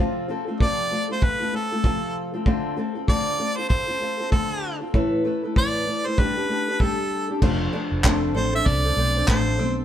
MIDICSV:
0, 0, Header, 1, 6, 480
1, 0, Start_track
1, 0, Tempo, 619835
1, 1906, Time_signature, 4, 2, 24, 8
1, 7626, End_track
2, 0, Start_track
2, 0, Title_t, "Harmonica"
2, 0, Program_c, 0, 22
2, 468, Note_on_c, 0, 74, 88
2, 824, Note_off_c, 0, 74, 0
2, 866, Note_on_c, 0, 72, 73
2, 960, Note_on_c, 0, 71, 80
2, 972, Note_off_c, 0, 72, 0
2, 1202, Note_on_c, 0, 69, 74
2, 1214, Note_off_c, 0, 71, 0
2, 1674, Note_off_c, 0, 69, 0
2, 2394, Note_on_c, 0, 74, 90
2, 2763, Note_on_c, 0, 72, 75
2, 2775, Note_off_c, 0, 74, 0
2, 2849, Note_off_c, 0, 72, 0
2, 2854, Note_on_c, 0, 72, 81
2, 3309, Note_off_c, 0, 72, 0
2, 3343, Note_on_c, 0, 69, 65
2, 3701, Note_off_c, 0, 69, 0
2, 4319, Note_on_c, 0, 74, 85
2, 4698, Note_on_c, 0, 72, 73
2, 4710, Note_off_c, 0, 74, 0
2, 4794, Note_on_c, 0, 71, 82
2, 4806, Note_off_c, 0, 72, 0
2, 5274, Note_on_c, 0, 69, 67
2, 5286, Note_off_c, 0, 71, 0
2, 5654, Note_off_c, 0, 69, 0
2, 6474, Note_on_c, 0, 72, 72
2, 6604, Note_off_c, 0, 72, 0
2, 6622, Note_on_c, 0, 76, 86
2, 6712, Note_on_c, 0, 74, 95
2, 6723, Note_off_c, 0, 76, 0
2, 7185, Note_off_c, 0, 74, 0
2, 7189, Note_on_c, 0, 72, 67
2, 7545, Note_off_c, 0, 72, 0
2, 7626, End_track
3, 0, Start_track
3, 0, Title_t, "Steel-string acoustic guitar"
3, 0, Program_c, 1, 25
3, 0, Note_on_c, 1, 48, 79
3, 0, Note_on_c, 1, 53, 80
3, 0, Note_on_c, 1, 57, 84
3, 0, Note_on_c, 1, 60, 88
3, 0, Note_on_c, 1, 65, 87
3, 0, Note_on_c, 1, 69, 83
3, 211, Note_off_c, 1, 57, 0
3, 217, Note_off_c, 1, 60, 0
3, 220, Note_on_c, 1, 57, 59
3, 223, Note_off_c, 1, 65, 0
3, 226, Note_on_c, 1, 60, 65
3, 227, Note_off_c, 1, 48, 0
3, 228, Note_off_c, 1, 53, 0
3, 228, Note_off_c, 1, 69, 0
3, 232, Note_on_c, 1, 65, 71
3, 237, Note_on_c, 1, 69, 70
3, 354, Note_off_c, 1, 69, 0
3, 363, Note_off_c, 1, 65, 0
3, 363, Note_on_c, 1, 69, 51
3, 366, Note_off_c, 1, 60, 0
3, 367, Note_off_c, 1, 57, 0
3, 372, Note_on_c, 1, 65, 50
3, 376, Note_on_c, 1, 60, 45
3, 380, Note_on_c, 1, 57, 44
3, 463, Note_off_c, 1, 57, 0
3, 463, Note_off_c, 1, 69, 0
3, 465, Note_off_c, 1, 60, 0
3, 467, Note_off_c, 1, 65, 0
3, 469, Note_on_c, 1, 48, 63
3, 470, Note_on_c, 1, 53, 71
3, 473, Note_on_c, 1, 57, 69
3, 475, Note_on_c, 1, 60, 70
3, 478, Note_on_c, 1, 65, 72
3, 478, Note_on_c, 1, 69, 66
3, 698, Note_off_c, 1, 57, 0
3, 704, Note_off_c, 1, 60, 0
3, 707, Note_on_c, 1, 57, 51
3, 708, Note_off_c, 1, 48, 0
3, 708, Note_off_c, 1, 53, 0
3, 711, Note_off_c, 1, 65, 0
3, 712, Note_off_c, 1, 69, 0
3, 714, Note_on_c, 1, 60, 50
3, 720, Note_on_c, 1, 65, 55
3, 724, Note_on_c, 1, 69, 56
3, 841, Note_off_c, 1, 69, 0
3, 848, Note_off_c, 1, 65, 0
3, 850, Note_on_c, 1, 69, 41
3, 851, Note_off_c, 1, 57, 0
3, 852, Note_off_c, 1, 60, 0
3, 857, Note_on_c, 1, 65, 43
3, 861, Note_on_c, 1, 60, 37
3, 868, Note_on_c, 1, 57, 39
3, 1080, Note_off_c, 1, 69, 0
3, 1087, Note_off_c, 1, 65, 0
3, 1090, Note_on_c, 1, 69, 48
3, 1091, Note_off_c, 1, 60, 0
3, 1097, Note_off_c, 1, 57, 0
3, 1097, Note_on_c, 1, 65, 48
3, 1101, Note_on_c, 1, 60, 45
3, 1106, Note_on_c, 1, 57, 38
3, 1175, Note_off_c, 1, 57, 0
3, 1182, Note_off_c, 1, 60, 0
3, 1185, Note_on_c, 1, 57, 52
3, 1186, Note_off_c, 1, 69, 0
3, 1187, Note_off_c, 1, 65, 0
3, 1191, Note_on_c, 1, 60, 51
3, 1197, Note_on_c, 1, 65, 53
3, 1204, Note_on_c, 1, 69, 54
3, 1321, Note_off_c, 1, 69, 0
3, 1326, Note_off_c, 1, 65, 0
3, 1329, Note_off_c, 1, 57, 0
3, 1330, Note_on_c, 1, 69, 45
3, 1333, Note_off_c, 1, 60, 0
3, 1335, Note_on_c, 1, 65, 39
3, 1341, Note_on_c, 1, 60, 40
3, 1345, Note_on_c, 1, 57, 39
3, 1420, Note_off_c, 1, 57, 0
3, 1422, Note_off_c, 1, 60, 0
3, 1422, Note_on_c, 1, 48, 63
3, 1425, Note_off_c, 1, 65, 0
3, 1426, Note_off_c, 1, 69, 0
3, 1426, Note_on_c, 1, 53, 69
3, 1429, Note_on_c, 1, 57, 70
3, 1431, Note_on_c, 1, 60, 70
3, 1434, Note_on_c, 1, 65, 76
3, 1436, Note_on_c, 1, 69, 67
3, 1800, Note_off_c, 1, 69, 0
3, 1807, Note_off_c, 1, 65, 0
3, 1808, Note_off_c, 1, 48, 0
3, 1809, Note_on_c, 1, 69, 58
3, 1810, Note_off_c, 1, 53, 0
3, 1811, Note_off_c, 1, 57, 0
3, 1812, Note_off_c, 1, 60, 0
3, 1816, Note_on_c, 1, 65, 49
3, 1821, Note_on_c, 1, 60, 47
3, 1828, Note_on_c, 1, 57, 41
3, 1901, Note_off_c, 1, 57, 0
3, 1902, Note_off_c, 1, 60, 0
3, 1905, Note_off_c, 1, 65, 0
3, 1905, Note_off_c, 1, 69, 0
3, 1905, Note_on_c, 1, 50, 81
3, 1910, Note_on_c, 1, 57, 78
3, 1911, Note_on_c, 1, 60, 83
3, 1914, Note_on_c, 1, 65, 82
3, 1918, Note_on_c, 1, 69, 89
3, 2133, Note_off_c, 1, 57, 0
3, 2139, Note_off_c, 1, 60, 0
3, 2142, Note_on_c, 1, 57, 60
3, 2144, Note_off_c, 1, 65, 0
3, 2145, Note_off_c, 1, 50, 0
3, 2148, Note_on_c, 1, 60, 69
3, 2150, Note_off_c, 1, 69, 0
3, 2153, Note_on_c, 1, 65, 61
3, 2159, Note_on_c, 1, 69, 71
3, 2276, Note_off_c, 1, 69, 0
3, 2285, Note_off_c, 1, 65, 0
3, 2286, Note_on_c, 1, 69, 51
3, 2288, Note_off_c, 1, 57, 0
3, 2291, Note_off_c, 1, 60, 0
3, 2295, Note_on_c, 1, 65, 46
3, 2301, Note_on_c, 1, 60, 42
3, 2380, Note_off_c, 1, 60, 0
3, 2381, Note_on_c, 1, 50, 65
3, 2384, Note_off_c, 1, 65, 0
3, 2384, Note_off_c, 1, 69, 0
3, 2388, Note_on_c, 1, 57, 63
3, 2390, Note_on_c, 1, 60, 73
3, 2393, Note_on_c, 1, 65, 75
3, 2394, Note_on_c, 1, 69, 74
3, 2614, Note_off_c, 1, 57, 0
3, 2621, Note_off_c, 1, 60, 0
3, 2624, Note_off_c, 1, 50, 0
3, 2624, Note_on_c, 1, 57, 46
3, 2627, Note_off_c, 1, 65, 0
3, 2630, Note_off_c, 1, 69, 0
3, 2630, Note_on_c, 1, 60, 52
3, 2637, Note_on_c, 1, 65, 52
3, 2641, Note_on_c, 1, 69, 54
3, 2764, Note_off_c, 1, 69, 0
3, 2769, Note_off_c, 1, 57, 0
3, 2772, Note_off_c, 1, 60, 0
3, 2773, Note_off_c, 1, 65, 0
3, 2773, Note_on_c, 1, 69, 43
3, 2783, Note_on_c, 1, 65, 41
3, 2788, Note_on_c, 1, 60, 34
3, 2996, Note_off_c, 1, 69, 0
3, 3006, Note_on_c, 1, 69, 47
3, 3007, Note_off_c, 1, 65, 0
3, 3014, Note_off_c, 1, 60, 0
3, 3017, Note_on_c, 1, 65, 41
3, 3023, Note_on_c, 1, 60, 40
3, 3100, Note_off_c, 1, 60, 0
3, 3100, Note_on_c, 1, 57, 47
3, 3104, Note_off_c, 1, 69, 0
3, 3105, Note_off_c, 1, 65, 0
3, 3109, Note_on_c, 1, 60, 50
3, 3114, Note_on_c, 1, 65, 55
3, 3120, Note_on_c, 1, 69, 52
3, 3236, Note_off_c, 1, 69, 0
3, 3245, Note_off_c, 1, 65, 0
3, 3246, Note_on_c, 1, 69, 46
3, 3247, Note_off_c, 1, 57, 0
3, 3251, Note_off_c, 1, 60, 0
3, 3254, Note_on_c, 1, 65, 39
3, 3262, Note_on_c, 1, 60, 37
3, 3335, Note_off_c, 1, 60, 0
3, 3335, Note_off_c, 1, 65, 0
3, 3337, Note_on_c, 1, 50, 58
3, 3339, Note_off_c, 1, 69, 0
3, 3341, Note_on_c, 1, 57, 62
3, 3344, Note_on_c, 1, 60, 66
3, 3345, Note_on_c, 1, 65, 66
3, 3349, Note_on_c, 1, 69, 68
3, 3714, Note_off_c, 1, 69, 0
3, 3723, Note_on_c, 1, 69, 46
3, 3724, Note_off_c, 1, 65, 0
3, 3725, Note_off_c, 1, 50, 0
3, 3727, Note_off_c, 1, 57, 0
3, 3729, Note_off_c, 1, 60, 0
3, 3733, Note_on_c, 1, 65, 44
3, 3742, Note_on_c, 1, 60, 37
3, 3822, Note_off_c, 1, 69, 0
3, 3822, Note_on_c, 1, 45, 84
3, 3825, Note_on_c, 1, 52, 80
3, 3827, Note_off_c, 1, 60, 0
3, 3827, Note_off_c, 1, 65, 0
3, 3828, Note_on_c, 1, 57, 83
3, 3830, Note_on_c, 1, 64, 85
3, 3831, Note_on_c, 1, 69, 85
3, 3836, Note_on_c, 1, 71, 76
3, 4053, Note_off_c, 1, 57, 0
3, 4060, Note_off_c, 1, 64, 0
3, 4062, Note_on_c, 1, 57, 63
3, 4064, Note_off_c, 1, 45, 0
3, 4066, Note_off_c, 1, 52, 0
3, 4066, Note_off_c, 1, 69, 0
3, 4069, Note_on_c, 1, 64, 63
3, 4070, Note_off_c, 1, 71, 0
3, 4075, Note_on_c, 1, 69, 66
3, 4080, Note_on_c, 1, 71, 69
3, 4198, Note_off_c, 1, 71, 0
3, 4205, Note_off_c, 1, 69, 0
3, 4207, Note_on_c, 1, 71, 48
3, 4208, Note_off_c, 1, 57, 0
3, 4211, Note_off_c, 1, 64, 0
3, 4214, Note_on_c, 1, 69, 43
3, 4220, Note_on_c, 1, 64, 41
3, 4225, Note_on_c, 1, 57, 39
3, 4298, Note_off_c, 1, 57, 0
3, 4300, Note_on_c, 1, 45, 61
3, 4302, Note_off_c, 1, 64, 0
3, 4302, Note_off_c, 1, 69, 0
3, 4305, Note_off_c, 1, 71, 0
3, 4305, Note_on_c, 1, 52, 60
3, 4307, Note_on_c, 1, 57, 61
3, 4311, Note_on_c, 1, 64, 62
3, 4311, Note_on_c, 1, 69, 62
3, 4313, Note_on_c, 1, 71, 62
3, 4534, Note_off_c, 1, 57, 0
3, 4539, Note_off_c, 1, 64, 0
3, 4543, Note_off_c, 1, 45, 0
3, 4543, Note_on_c, 1, 57, 49
3, 4545, Note_off_c, 1, 52, 0
3, 4546, Note_off_c, 1, 69, 0
3, 4548, Note_on_c, 1, 64, 52
3, 4549, Note_off_c, 1, 71, 0
3, 4555, Note_on_c, 1, 69, 57
3, 4560, Note_on_c, 1, 71, 54
3, 4676, Note_off_c, 1, 71, 0
3, 4683, Note_off_c, 1, 69, 0
3, 4685, Note_on_c, 1, 71, 40
3, 4688, Note_off_c, 1, 57, 0
3, 4688, Note_off_c, 1, 64, 0
3, 4692, Note_on_c, 1, 69, 39
3, 4698, Note_on_c, 1, 64, 35
3, 4704, Note_on_c, 1, 57, 36
3, 4779, Note_off_c, 1, 57, 0
3, 4782, Note_on_c, 1, 55, 61
3, 4783, Note_off_c, 1, 71, 0
3, 4784, Note_off_c, 1, 69, 0
3, 4788, Note_off_c, 1, 64, 0
3, 4788, Note_on_c, 1, 57, 72
3, 4791, Note_on_c, 1, 62, 67
3, 4794, Note_on_c, 1, 67, 70
3, 4794, Note_on_c, 1, 69, 69
3, 4916, Note_off_c, 1, 69, 0
3, 4925, Note_on_c, 1, 69, 44
3, 4926, Note_off_c, 1, 67, 0
3, 4928, Note_off_c, 1, 55, 0
3, 4931, Note_off_c, 1, 57, 0
3, 4932, Note_off_c, 1, 62, 0
3, 4935, Note_on_c, 1, 67, 42
3, 4944, Note_on_c, 1, 62, 39
3, 5023, Note_off_c, 1, 69, 0
3, 5025, Note_off_c, 1, 62, 0
3, 5026, Note_on_c, 1, 57, 51
3, 5028, Note_off_c, 1, 67, 0
3, 5034, Note_on_c, 1, 62, 53
3, 5038, Note_on_c, 1, 67, 48
3, 5045, Note_on_c, 1, 69, 54
3, 5165, Note_off_c, 1, 69, 0
3, 5170, Note_off_c, 1, 57, 0
3, 5174, Note_off_c, 1, 62, 0
3, 5174, Note_off_c, 1, 67, 0
3, 5174, Note_on_c, 1, 69, 44
3, 5184, Note_on_c, 1, 67, 41
3, 5193, Note_on_c, 1, 62, 36
3, 5263, Note_off_c, 1, 62, 0
3, 5265, Note_off_c, 1, 67, 0
3, 5267, Note_on_c, 1, 55, 63
3, 5268, Note_off_c, 1, 69, 0
3, 5269, Note_on_c, 1, 57, 66
3, 5272, Note_on_c, 1, 62, 61
3, 5274, Note_on_c, 1, 67, 65
3, 5279, Note_on_c, 1, 69, 72
3, 5642, Note_off_c, 1, 69, 0
3, 5649, Note_off_c, 1, 67, 0
3, 5650, Note_off_c, 1, 55, 0
3, 5651, Note_off_c, 1, 57, 0
3, 5652, Note_on_c, 1, 69, 46
3, 5653, Note_off_c, 1, 62, 0
3, 5658, Note_on_c, 1, 67, 39
3, 5667, Note_on_c, 1, 62, 41
3, 5739, Note_off_c, 1, 62, 0
3, 5743, Note_on_c, 1, 53, 78
3, 5747, Note_off_c, 1, 69, 0
3, 5748, Note_on_c, 1, 57, 77
3, 5749, Note_on_c, 1, 62, 83
3, 5750, Note_off_c, 1, 67, 0
3, 5755, Note_on_c, 1, 69, 85
3, 5755, Note_on_c, 1, 72, 91
3, 5977, Note_off_c, 1, 57, 0
3, 5983, Note_off_c, 1, 62, 0
3, 5984, Note_off_c, 1, 53, 0
3, 5986, Note_on_c, 1, 57, 67
3, 5987, Note_off_c, 1, 69, 0
3, 5990, Note_off_c, 1, 72, 0
3, 5992, Note_on_c, 1, 62, 74
3, 5996, Note_on_c, 1, 69, 76
3, 6002, Note_on_c, 1, 72, 70
3, 6223, Note_off_c, 1, 57, 0
3, 6225, Note_off_c, 1, 62, 0
3, 6226, Note_on_c, 1, 53, 75
3, 6229, Note_off_c, 1, 69, 0
3, 6231, Note_off_c, 1, 72, 0
3, 6233, Note_on_c, 1, 57, 77
3, 6235, Note_on_c, 1, 62, 83
3, 6238, Note_on_c, 1, 69, 83
3, 6240, Note_on_c, 1, 72, 81
3, 6457, Note_off_c, 1, 57, 0
3, 6466, Note_off_c, 1, 53, 0
3, 6466, Note_off_c, 1, 62, 0
3, 6466, Note_on_c, 1, 57, 54
3, 6472, Note_off_c, 1, 69, 0
3, 6473, Note_off_c, 1, 72, 0
3, 6475, Note_on_c, 1, 62, 53
3, 6480, Note_on_c, 1, 69, 61
3, 6485, Note_on_c, 1, 72, 59
3, 6602, Note_off_c, 1, 72, 0
3, 6610, Note_off_c, 1, 57, 0
3, 6611, Note_off_c, 1, 69, 0
3, 6611, Note_on_c, 1, 72, 44
3, 6614, Note_off_c, 1, 62, 0
3, 6620, Note_on_c, 1, 69, 40
3, 6627, Note_on_c, 1, 62, 36
3, 6842, Note_off_c, 1, 72, 0
3, 6851, Note_off_c, 1, 69, 0
3, 6851, Note_on_c, 1, 72, 49
3, 6858, Note_off_c, 1, 62, 0
3, 6860, Note_on_c, 1, 69, 48
3, 6868, Note_on_c, 1, 62, 40
3, 6946, Note_off_c, 1, 62, 0
3, 6946, Note_off_c, 1, 72, 0
3, 6947, Note_on_c, 1, 57, 55
3, 6951, Note_off_c, 1, 69, 0
3, 6955, Note_on_c, 1, 62, 62
3, 6959, Note_on_c, 1, 69, 58
3, 6964, Note_on_c, 1, 72, 61
3, 7086, Note_off_c, 1, 72, 0
3, 7090, Note_off_c, 1, 57, 0
3, 7094, Note_off_c, 1, 62, 0
3, 7095, Note_on_c, 1, 72, 52
3, 7097, Note_off_c, 1, 69, 0
3, 7105, Note_on_c, 1, 69, 41
3, 7113, Note_on_c, 1, 62, 40
3, 7187, Note_off_c, 1, 62, 0
3, 7188, Note_off_c, 1, 72, 0
3, 7191, Note_off_c, 1, 69, 0
3, 7191, Note_on_c, 1, 53, 70
3, 7194, Note_on_c, 1, 57, 74
3, 7196, Note_on_c, 1, 62, 69
3, 7200, Note_on_c, 1, 69, 73
3, 7202, Note_on_c, 1, 72, 75
3, 7411, Note_off_c, 1, 57, 0
3, 7421, Note_off_c, 1, 62, 0
3, 7421, Note_on_c, 1, 57, 55
3, 7425, Note_off_c, 1, 69, 0
3, 7428, Note_off_c, 1, 53, 0
3, 7430, Note_on_c, 1, 62, 55
3, 7431, Note_off_c, 1, 72, 0
3, 7434, Note_on_c, 1, 69, 59
3, 7440, Note_on_c, 1, 72, 62
3, 7626, Note_off_c, 1, 57, 0
3, 7626, Note_off_c, 1, 62, 0
3, 7626, Note_off_c, 1, 69, 0
3, 7626, Note_off_c, 1, 72, 0
3, 7626, End_track
4, 0, Start_track
4, 0, Title_t, "Steel-string acoustic guitar"
4, 0, Program_c, 2, 25
4, 6223, Note_on_c, 2, 60, 54
4, 6707, Note_on_c, 2, 62, 59
4, 6943, Note_off_c, 2, 60, 0
4, 6946, Note_on_c, 2, 60, 55
4, 7180, Note_off_c, 2, 62, 0
4, 7423, Note_off_c, 2, 60, 0
4, 7427, Note_on_c, 2, 60, 55
4, 7626, Note_off_c, 2, 60, 0
4, 7626, End_track
5, 0, Start_track
5, 0, Title_t, "Fingered electric bass"
5, 0, Program_c, 3, 33
5, 5745, Note_on_c, 3, 29, 94
5, 5942, Note_off_c, 3, 29, 0
5, 6129, Note_on_c, 3, 29, 82
5, 6464, Note_off_c, 3, 29, 0
5, 6464, Note_on_c, 3, 33, 75
5, 6661, Note_off_c, 3, 33, 0
5, 6707, Note_on_c, 3, 36, 85
5, 6903, Note_off_c, 3, 36, 0
5, 6943, Note_on_c, 3, 35, 94
5, 7141, Note_off_c, 3, 35, 0
5, 7188, Note_on_c, 3, 33, 78
5, 7425, Note_off_c, 3, 33, 0
5, 7425, Note_on_c, 3, 35, 90
5, 7622, Note_off_c, 3, 35, 0
5, 7626, End_track
6, 0, Start_track
6, 0, Title_t, "Drums"
6, 468, Note_on_c, 9, 36, 99
6, 546, Note_off_c, 9, 36, 0
6, 946, Note_on_c, 9, 36, 99
6, 1024, Note_off_c, 9, 36, 0
6, 1426, Note_on_c, 9, 36, 85
6, 1503, Note_off_c, 9, 36, 0
6, 1905, Note_on_c, 9, 36, 92
6, 1983, Note_off_c, 9, 36, 0
6, 2387, Note_on_c, 9, 36, 100
6, 2465, Note_off_c, 9, 36, 0
6, 2867, Note_on_c, 9, 36, 93
6, 2944, Note_off_c, 9, 36, 0
6, 3346, Note_on_c, 9, 36, 96
6, 3424, Note_off_c, 9, 36, 0
6, 3826, Note_on_c, 9, 36, 89
6, 3903, Note_off_c, 9, 36, 0
6, 4308, Note_on_c, 9, 36, 103
6, 4385, Note_off_c, 9, 36, 0
6, 4787, Note_on_c, 9, 36, 97
6, 4864, Note_off_c, 9, 36, 0
6, 5266, Note_on_c, 9, 36, 84
6, 5344, Note_off_c, 9, 36, 0
6, 5746, Note_on_c, 9, 36, 96
6, 5746, Note_on_c, 9, 49, 75
6, 5823, Note_off_c, 9, 49, 0
6, 5824, Note_off_c, 9, 36, 0
6, 6228, Note_on_c, 9, 39, 105
6, 6229, Note_on_c, 9, 36, 101
6, 6305, Note_off_c, 9, 39, 0
6, 6306, Note_off_c, 9, 36, 0
6, 6708, Note_on_c, 9, 36, 106
6, 6786, Note_off_c, 9, 36, 0
6, 7186, Note_on_c, 9, 39, 99
6, 7188, Note_on_c, 9, 36, 100
6, 7263, Note_off_c, 9, 39, 0
6, 7265, Note_off_c, 9, 36, 0
6, 7626, End_track
0, 0, End_of_file